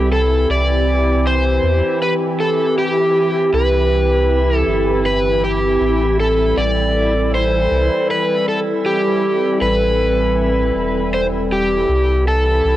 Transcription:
Already playing: C2 E3 C4 E4 G4
0.12 A4
0.49 C2 D5
1.27 C5
1.63 E2
2.03 B4
2.40 A4
2.78 G4
3.53 C2 B4
4.58 A4
4.67 G1
5.06 B4
5.44 G4
5.80 A1 G3 A4
6.20 A4
6.57 A1 D5
7.34 C5
7.71 C2
8.11 B4
8.48 A4
8.86 G4
9.61 A1 B4
10.75 E1
11.14 C5
11.52 G4
11.88 C2 E3 C4 G4
12.28 A4
12.64 C2

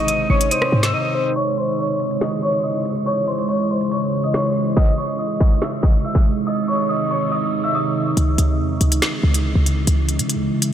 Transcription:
Already playing: G#1 C3 D#3 G#3 D#4 D#5
0.08 D#6 D#7, closed hi-hat
0.30 G#1 C#5 C#6 C#7
0.41 closed hi-hat
0.51 C5 D#6 D#7, closed hi-hat
0.62 cross-stick
0.72 G#2
0.83 E6 E7, snare, closed hi-hat
0.93 D#5 D#6 D#7
1.15 C5
1.36 C#3 E3 G#3 E4 C#5 C#6, closed hi-hat
1.57 C5 C6, closed hi-hat
1.79 C#5 C#6
2.00 closed hi-hat
2.11 closed hi-hat
2.21 D#5 D#6, snare, closed hi-hat
2.42 C#5 C#6
2.54 closed hi-hat
2.63 D#5 D#6
2.85 closed hi-hat
3.06 C#5 C#6, closed hi-hat
3.28 C5 C6, closed hi-hat
3.38 closed hi-hat
3.49 C#5 C#6, closed hi-hat
3.71 C5 C6
3.81 closed hi-hat
3.91 C#5 C#6, closed hi-hat
4.24 D#5 D#6, closed hi-hat
4.34 C#5 C#6, snare
4.76 C3 D#3 D#4 D#5 D#6, kick, closed hi-hat
4.98 C#5 C#6, closed hi-hat
5.19 D#5 D#6
5.40 kick, closed hi-hat
5.51 closed hi-hat
5.62 E5 E6, snare, closed hi-hat
5.83 D#5 D#6, kick
5.94 closed hi-hat
6.05 E5 E6
6.15 kick
6.26 closed hi-hat
6.47 D#5 D#6
6.68 C#5 C#6
6.89 D#5 D#6
7.11 C#5 C#6
7.32 D#5 D#6
7.64 E5 E6
7.75 D#5 D#6
8.17 C#2 C#3 E3 G#3 E4, closed hi-hat
8.38 C#2, closed hi-hat
8.60 E2
8.81 C#2, closed hi-hat
8.92 closed hi-hat
9.02 snare, closed hi-hat
9.23 C#2
9.34 closed hi-hat
9.55 C#2
9.66 closed hi-hat
9.87 C#2, closed hi-hat
10.09 closed hi-hat
10.19 C#3, closed hi-hat
10.29 closed hi-hat
10.35 C#2
10.62 closed hi-hat

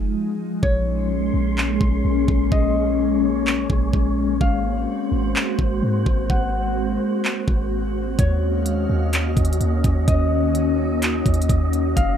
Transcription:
Already playing: F1 F3 G#3 D#4 G#5
0.63 A#1 G#3 A#3 C#4 C#5 C6, kick
1.34 A#1
1.58 clap
1.81 A#1, kick
2.05 A#1
2.28 A#1, kick
2.52 A#1 C#5 D#5, kick
3.47 clap
3.70 A#1, kick
3.93 A#1, kick
4.41 G#1 A#3 C4 F#4 C5 F5, kick
5.12 G#1
5.36 clap
5.59 G#1, kick
5.83 G#2
6.06 G#1, kick
6.30 G#1 F#5, kick
7.25 clap
7.48 G#1, kick
8.19 D#2 D#3 A#3 C#4 C#5 D#5 F5, kick, closed hi-hat
8.66 closed hi-hat
8.90 D#2
9.13 clap, closed hi-hat
9.37 D#2, kick, closed hi-hat
9.45 closed hi-hat
9.53 closed hi-hat
9.61 D#2, closed hi-hat
9.84 D#2, kick, closed hi-hat
10.08 D#2 D#4 D#5, kick, closed hi-hat
10.55 closed hi-hat
11.02 clap, closed hi-hat
11.26 D#2, kick, closed hi-hat
11.34 closed hi-hat
11.42 closed hi-hat
11.49 D#2, kick, closed hi-hat
11.73 closed hi-hat
11.96 F1 G#3 D#4 F4 F5, kick, closed hi-hat

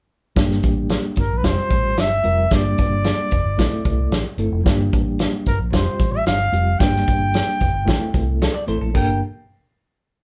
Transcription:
0.36 G1 G3 A#3 D4 G4, kick, snare, closed hi-hat
0.51 snare
0.63 A1, kick, closed hi-hat
0.89 snare, closed hi-hat
1.16 G1 A#4, kick, closed hi-hat
1.32 A#1
1.37 B4
1.43 F1 G3 C4 F4 G4 C5, kick, snare, closed hi-hat
1.58 muted fingered electric bass stroke
1.71 A1, kick, closed hi-hat
1.97 G1 E5, snare, closed hi-hat
2.23 F1 G3 C4 F4 A#4, closed hi-hat
2.50 G1 G3 A#3 D4 G4, kick, snare, closed hi-hat
2.55 D5
2.78 G1, kick, closed hi-hat
3.04 snare, closed hi-hat
3.31 F1, kick, closed hi-hat
3.45 G1
3.58 A1 A3 C4 E4 A4, kick, snare, closed hi-hat
3.85 C2, kick, closed hi-hat
4.11 A1, snare, closed hi-hat
4.38 G1 A3 C4 E4 A4, closed hi-hat
4.52 F1
4.64 G1 G3 A#3 D4 G4, kick, snare, closed hi-hat
4.93 A1, kick, closed hi-hat
5.19 snare, closed hi-hat
5.46 G1 A#4, kick, closed hi-hat
5.59 A#1
5.72 F1 G3 C4 F4 G4 C5, kick, snare, closed hi-hat
5.86 muted fingered electric bass stroke
6.00 A1, kick, closed hi-hat
6.13 E5
6.26 G1 F5, snare, closed hi-hat
6.52 F1 G3 C4 F4 G4, closed hi-hat
6.79 G1 G3 A#3 D4 G4 G5, kick, snare, closed hi-hat
6.96 snare
7.08 G1, kick, closed hi-hat
7.34 snare, closed hi-hat
7.60 F1, kick, closed hi-hat
7.73 G1
7.85 A1 A3 C4 E4 A4, kick, snare, closed hi-hat
8.14 C2, kick, closed hi-hat
8.42 A4, snare, closed hi-hat
8.54 D5
8.67 A1 A3 C4 E4 A4 C5, closed hi-hat
8.81 A#1 A4
8.94 G1 A#3 D4 G4 A#4 G5, kick, crash

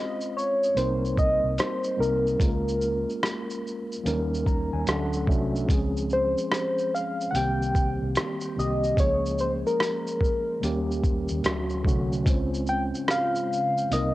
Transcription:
Already playing: G#3 C4 C#4 F4 C5 D#5
0.21 shaker
0.37 C#5, shaker
0.63 shaker
0.75 C2 G3 A#3 C4 D#4 C5, closed hi-hat, shaker
0.79 A#4
1.05 shaker
1.17 D#5, kick, shaker
1.44 C2
1.58 C5, cross-stick, closed hi-hat, shaker
1.84 shaker
1.97 C2 G3 A#3 C4 D#4 A#4
2.01 A#4, shaker
2.27 shaker
2.38 C#2 G#3 A#3 C#4 F4 G#4, kick, closed hi-hat, shaker
2.48 A#4
2.68 shaker
2.81 shaker
3.09 shaker
3.23 cross-stick, closed hi-hat, shaker
3.50 shaker
3.67 shaker
3.92 shaker
4.04 D#2 F#3 A#3 C#4 D#4, closed hi-hat, shaker
4.08 G3 A#4
4.34 shaker
4.46 A#5, kick, shaker
4.73 D#2 G#5
4.85 D2 F#3 A3 C#4 D4 F#5, cross-stick, closed hi-hat, shaker
4.89 A4
5.13 shaker
5.27 C2 F#3 A3 C#4 D4 F#4 E5, kick
5.31 shaker
5.56 shaker
5.68 C#2 F3 G#3 C4 C#4 G#4, kick, closed hi-hat, shaker
5.97 shaker
6.10 C5, shaker
6.38 shaker
6.52 cross-stick, closed hi-hat, shaker
6.78 shaker
6.95 F5, shaker
7.21 shaker
7.31 C2 D#3 G3 A#3 F#5
7.35 C4 G4 G5, closed hi-hat, shaker
7.62 shaker
7.75 kick, shaker
8.02 C2
8.15 cross-stick, closed hi-hat, shaker
8.41 shaker
8.55 C2 D#3 G3 A#3 C4 D#5
8.59 G4, shaker
8.84 shaker
8.96 C#2 F3 G#3 A#3 C#4 G#4 C#5, kick, closed hi-hat, shaker
9.26 shaker
9.38 C5, shaker
9.67 A#4, shaker
9.80 cross-stick, closed hi-hat, shaker
10.07 shaker
10.21 kick, shaker
10.60 D#2 D#3 G3 A#3 C#4, closed hi-hat, shaker
10.64 G4
10.91 shaker
11.04 kick, shaker
11.28 D#2, shaker
11.43 D2 D3 F#3 A3 C#4 F#4, cross-stick, closed hi-hat, shaker
11.70 shaker
11.83 C2 D3 F#3 A3 C#4, kick
11.87 F#4, shaker
12.12 shaker
12.25 C#2 C#3 G#3 C4 C#4 F4, kick, closed hi-hat, shaker
12.29 C5
12.54 shaker
12.66 G5, shaker
12.95 shaker
13.08 F5, cross-stick, closed hi-hat, shaker
13.35 shaker
13.53 shaker
13.77 shaker
13.90 C2 C3 G3 A#3 C4 D#4 D#5, closed hi-hat, shaker
13.94 A#4

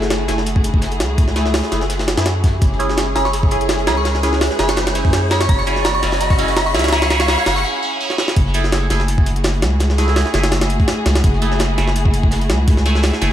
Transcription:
Already playing: F#1 A3 E4 F#4 G#4, riser
0.02 snare
0.10 snare, closed hi-hat
0.28 F#1 A3 E4 G#4, snare, closed hi-hat
0.38 snare
0.46 closed hi-hat
0.56 kick
0.64 closed hi-hat
0.74 kick
0.82 snare, closed hi-hat
0.91 closed hi-hat
1.00 C#2, snare, closed hi-hat
1.18 kick, closed hi-hat
1.28 snare
1.36 A3 E4 G#4, snare, closed hi-hat
1.45 snare
1.54 snare, closed hi-hat, open hi-hat
1.64 snare
1.71 F#1 A3 E4 G#4, snare, closed hi-hat
1.81 snare, closed hi-hat
1.89 snare, closed hi-hat
1.99 snare, closed hi-hat
2.08 snare, closed hi-hat
2.17 F#2 A3 E4 G#4, snare, closed hi-hat
2.25 snare, closed hi-hat
2.44 kick, snare, closed hi-hat
2.61 F#1 G#3 C#4 G#4, kick, closed hi-hat
2.72 snare
2.79 C#4 E4 G#4, closed hi-hat
2.89 snare
2.97 snare, closed hi-hat
3.15 F#1 C#4 E4 G#4 B5, snare, closed hi-hat
3.25 C#6, snare
3.33 closed hi-hat
3.43 kick
3.51 C#4 E4 G#4, closed hi-hat
3.61 closed hi-hat
3.69 snare, closed hi-hat
3.79 closed hi-hat
3.87 C#2 C#4 E4 G#4 B5, snare, closed hi-hat
3.97 C#6
4.05 snare, closed hi-hat
4.15 snare
4.23 C#4 E4 G#4, snare, closed hi-hat
4.33 snare
4.41 snare, closed hi-hat, open hi-hat
4.51 snare
4.59 F#1 C#4 E4 G#4 B5, snare, closed hi-hat
4.68 C#6, snare, closed hi-hat
4.76 snare, closed hi-hat
4.87 snare, closed hi-hat
4.95 C#4 E4 G#4, closed hi-hat
5.05 F#2, kick, closed hi-hat
5.13 snare, closed hi-hat
5.30 C#4 E4 G#4 B5, snare, closed hi-hat
5.41 C#6, snare, closed hi-hat
5.49 F#1 F#4 B5, kick, closed hi-hat
5.58 C#6, snare
5.66 C#4 E4 G#4, closed hi-hat
5.76 snare
5.85 B5, snare, closed hi-hat
5.95 C#6
6.02 F#1 C#4 E4 G#4, snare, closed hi-hat
6.12 snare, closed hi-hat
6.21 B5, snare, closed hi-hat
6.30 C#6, kick, snare, closed hi-hat
6.38 C#4 E4 G#4, snare, closed hi-hat
6.48 snare, closed hi-hat
6.57 B5, snare, closed hi-hat
6.66 C#6, closed hi-hat
6.74 C#2 C#4 E4 G#4, snare, closed hi-hat
6.79 snare, closed hi-hat
6.84 snare, closed hi-hat
6.88 snare, closed hi-hat
6.92 C#4 E4 G#4 B5, snare, closed hi-hat
7.02 C#6, snare, closed hi-hat
7.10 C#4 E4 G#4 B5, snare, closed hi-hat
7.19 C#6, snare, closed hi-hat
7.28 C#4 E4 G#4 B5, snare, closed hi-hat, open hi-hat
7.38 C#6, snare
7.46 F#1 C#4 E4 G#4 B5, snare, closed hi-hat
7.56 C#6, snare, closed hi-hat
7.64 C#4 E4 G#4
7.83 C#4 E4 G#4
8.00 C#4 E4 G#4
8.10 snare
8.18 C#4 E4 G#4, snare
8.28 snare
8.36 F#1 A3 E4 F#4 G#4, kick, closed hi-hat
8.47 snare
8.54 A3 E4 G#4, closed hi-hat
8.64 snare
8.72 snare, closed hi-hat
8.90 F#1 A3 E4 G#4, snare, closed hi-hat
9.00 snare
9.08 closed hi-hat
9.18 kick
9.26 closed hi-hat
9.36 closed hi-hat
9.44 snare, closed hi-hat
9.54 closed hi-hat
9.62 C#2, snare, closed hi-hat
9.80 snare, closed hi-hat
9.90 snare
9.98 A3 E4 G#4, snare, closed hi-hat
10.08 snare
10.16 snare, closed hi-hat, open hi-hat
10.26 snare
10.34 F#1 A3 E4 G#4, snare, closed hi-hat
10.43 snare, closed hi-hat
10.52 snare, closed hi-hat
10.61 snare, closed hi-hat
10.70 closed hi-hat
10.80 kick, closed hi-hat
10.88 snare, closed hi-hat
11.06 C#2, snare, closed hi-hat
11.15 snare, closed hi-hat
11.24 F#1, kick, closed hi-hat
11.33 snare
11.42 A3 E4 G#4, closed hi-hat
11.52 snare
11.59 snare, closed hi-hat
11.78 F#1 A3 E4 G#4, snare, closed hi-hat
11.88 snare
11.96 closed hi-hat
12.05 kick
12.14 closed hi-hat
12.23 kick
12.31 snare, closed hi-hat
12.41 closed hi-hat
12.50 C#2, snare, closed hi-hat
12.68 kick, closed hi-hat
12.77 snare
12.86 A3 E4 G#4, snare, closed hi-hat
12.95 snare
13.02 snare, closed hi-hat, open hi-hat
13.13 snare
13.21 F#1 A3 E4 G#4, snare, closed hi-hat

